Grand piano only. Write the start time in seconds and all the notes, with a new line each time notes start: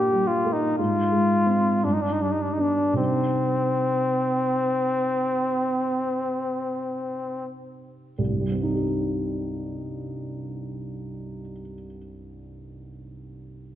Already playing: A#2 A#3 D4
0.12 G3
0.45 A#3
0.79 G#2
1.11 G#3
1.46 C4
1.83 G2
2.20 G3
2.58 B3 D4
2.93 C3 G3 C4 D#4
8.18 C2
8.29 G2
8.40 G3
8.51 C4
8.63 D#4
8.74 G4